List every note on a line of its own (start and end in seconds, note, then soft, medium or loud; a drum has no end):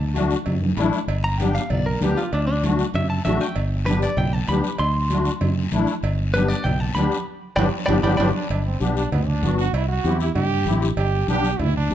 0.00 0.34 D2 medium
0.00 0.29 A5 medium
0.14 0.37 A3 medium
0.14 0.37 D4 medium
0.14 0.37 F#4 medium
0.14 cowbell medium
0.14 high conga medium
0.14 short guiro medium
0.31 short guiro medium
0.46 0.71 F#2 medium
0.46 cowbell medium
0.46 low conga medium
0.46 long guiro medium
0.62 high conga medium
0.77 0.90 A1 medium
0.77 0.99 A3 medium
0.77 0.99 D4 medium
0.77 0.99 E4 loud
0.77 cowbell medium
0.77 high conga medium
0.77 low timbale medium
0.77 short guiro medium
0.93 short guiro medium
1.08 1.57 G1 medium
1.08 cowbell loud
1.08 long guiro medium
1.24 1.38 A#5 medium
1.38 1.61 B3 medium
1.38 1.61 D4 medium
1.38 1.62 G4 medium
1.38 1.54 G5 medium
1.38 cowbell medium
1.38 high conga medium
1.38 short guiro medium
1.55 1.70 F5 medium
1.55 short guiro medium
1.70 1.95 B1 medium
1.70 1.85 D5 medium
1.70 cowbell medium
1.70 low conga medium
1.70 long guiro medium
1.86 2.03 A#4 medium
2.01 2.14 D2 medium
2.01 2.23 B3 medium
2.01 2.23 D4 medium
2.01 2.23 G4 medium
2.01 2.17 G4 medium
2.01 cowbell medium
2.01 high conga medium
2.01 short guiro medium
2.17 2.32 F4 medium
2.17 short guiro medium
2.33 2.82 D2 loud
2.33 2.46 D4 medium
2.33 cowbell medium
2.33 long guiro medium
2.47 2.62 D4 medium
2.64 2.85 A3 medium
2.64 2.86 D4 medium
2.64 2.86 F#4 medium
2.64 cowbell medium
2.64 high conga medium
2.64 short guiro medium
2.79 short guiro medium
2.94 3.19 F#2 medium
2.94 3.09 E5 medium
2.94 cowbell medium
2.94 low conga medium
2.94 long guiro medium
3.10 3.24 A5 medium
3.25 3.37 A1 medium
3.25 3.47 A3 medium
3.25 3.47 D4 medium
3.25 3.48 F#4 medium
3.25 3.41 E5 medium
3.25 cowbell medium
3.25 high conga medium
3.25 low timbale medium
3.25 short guiro medium
3.41 3.56 G5 medium
3.41 short guiro medium
3.56 4.05 G1 loud
3.56 cowbell medium
3.56 long guiro medium
3.86 4.09 B3 medium
3.86 4.09 D4 medium
3.86 4.09 G4 medium
3.86 4.01 B4 medium
3.86 cowbell medium
3.86 high conga medium
3.86 short guiro medium
4.02 4.18 D5 medium
4.02 short guiro medium
4.17 4.42 B1 medium
4.17 4.33 G5 medium
4.17 cowbell medium
4.17 low conga medium
4.17 long guiro medium
4.33 4.48 A5 medium
4.47 4.61 D2 medium
4.47 4.70 B3 medium
4.47 4.70 D4 medium
4.47 4.70 G4 medium
4.47 4.79 B5 medium
4.47 cowbell medium
4.47 high conga medium
4.47 short guiro medium
4.64 short guiro medium
4.78 5.29 D2 medium
4.78 5.39 C6 medium
4.78 cowbell loud
4.78 long guiro medium
5.10 5.32 A3 medium
5.10 5.32 D4 medium
5.10 5.32 F#4 medium
5.10 cowbell medium
5.10 high conga medium
5.10 short guiro medium
5.25 short guiro medium
5.41 5.66 F#2 medium
5.41 cowbell medium
5.41 low conga medium
5.41 long guiro medium
5.72 5.85 A1 medium
5.72 5.94 A3 medium
5.72 5.94 D4 medium
5.72 5.94 E4 medium
5.72 cowbell medium
5.72 high conga medium
5.72 short guiro medium
5.87 short guiro medium
6.03 6.53 G1 loud
6.03 cowbell loud
6.03 long guiro medium
6.34 6.56 B3 medium
6.34 6.56 D4 medium
6.34 6.57 G4 medium
6.34 6.48 B4 loud
6.34 cowbell medium
6.34 high conga medium
6.34 short guiro medium
6.48 6.64 D5 medium
6.48 short guiro medium
6.64 6.90 B1 medium
6.64 6.80 G5 medium
6.64 cowbell medium
6.64 low conga medium
6.64 long guiro medium
6.80 6.94 A5 medium
6.95 7.08 D2 medium
6.95 7.17 B3 medium
6.95 7.18 D4 medium
6.95 7.18 G4 medium
6.95 7.25 B5 medium
6.95 cowbell medium
6.95 high conga medium
6.95 short guiro medium
7.12 short guiro medium
7.56 7.69 G1 medium
7.56 7.68 B3 medium
7.56 7.68 D4 loud
7.56 7.68 G4 loud
7.56 7.67 D5 loud
7.56 7.67 G5 loud
7.56 7.66 B5 medium
7.56 high conga loud
7.56 high timbale loud
7.56 long guiro loud
7.86 8.00 G1 medium
7.86 7.99 D4 medium
7.86 7.99 G4 loud
7.86 7.97 D5 loud
7.86 7.97 G5 loud
7.86 7.97 B5 medium
7.86 high conga loud
7.86 high timbale loud
7.86 long guiro loud
7.90 7.99 B3 loud
8.03 8.15 G1 loud
8.03 8.14 B3 loud
8.03 8.14 D4 loud
8.03 8.14 G4 loud
8.03 8.13 D5 loud
8.03 8.14 G5 loud
8.03 8.13 B5 medium
8.03 high conga loud
8.03 high timbale loud
8.03 long guiro medium
8.17 8.31 G1 loud
8.17 8.30 B3 loud
8.17 8.29 D4 loud
8.17 8.30 G4 medium
8.17 8.28 D5 loud
8.17 8.28 G5 loud
8.17 8.28 B5 loud
8.17 high conga loud
8.17 high timbale loud
8.17 long guiro medium
8.35 8.50 D4 medium
8.50 8.75 G1 medium
8.50 8.65 D4 medium
8.50 cowbell loud
8.50 high conga soft
8.50 long guiro medium
8.66 8.82 C4 medium
8.81 9.06 B1 medium
8.81 9.03 B3 medium
8.81 8.97 D4 medium
8.81 9.03 D4 medium
8.81 9.03 G4 medium
8.81 high conga medium
8.81 short guiro medium
8.97 9.12 D4 medium
8.97 short guiro medium
9.12 9.44 D2 medium
9.12 9.29 B3 medium
9.12 cowbell medium
9.12 high conga soft
9.12 low conga medium
9.12 long guiro medium
9.27 9.57 D4 loud
9.42 9.68 G1 medium
9.42 9.64 B3 medium
9.42 9.65 D4 medium
9.42 9.65 F#4 medium
9.42 high conga medium
9.42 short guiro medium
9.58 9.76 F#4 loud
9.58 short guiro medium
9.73 9.98 C2 medium
9.73 9.88 E4 loud
9.73 cowbell loud
9.73 high conga soft
9.73 long guiro medium
9.88 10.18 F#4 loud
10.04 10.29 E2 medium
10.04 10.26 C4 medium
10.04 10.27 E4 medium
10.04 10.27 G4 medium
10.04 high conga medium
10.04 short guiro medium
10.20 10.34 E4 medium
10.20 short guiro medium
10.35 10.67 G2 medium
10.35 10.79 G4 loud
10.35 cowbell medium
10.35 high conga soft
10.35 low conga medium
10.35 long guiro medium
10.65 10.91 A1 medium
10.65 10.88 C4 medium
10.65 10.89 E4 medium
10.65 10.89 G4 medium
10.65 high conga medium
10.65 short guiro medium
10.82 short guiro medium
10.97 11.22 G1 loud
10.97 11.26 G4 loud
10.97 cowbell loud
10.97 high conga soft
10.97 long guiro medium
11.28 11.53 B1 medium
11.28 11.50 B3 medium
11.28 11.50 D4 medium
11.28 11.51 G4 medium
11.28 11.62 G4 loud
11.28 high conga medium
11.28 short guiro medium
11.44 short guiro medium
11.59 11.92 D2 medium
11.59 11.76 E4 loud
11.59 cowbell medium
11.59 high conga soft
11.59 low conga medium
11.59 long guiro medium
11.77 11.94 D4 medium
11.90 11.94 G1 medium
11.90 11.94 B3 medium
11.90 11.94 D4 medium
11.90 11.94 G4 medium
11.90 high conga medium
11.90 short guiro medium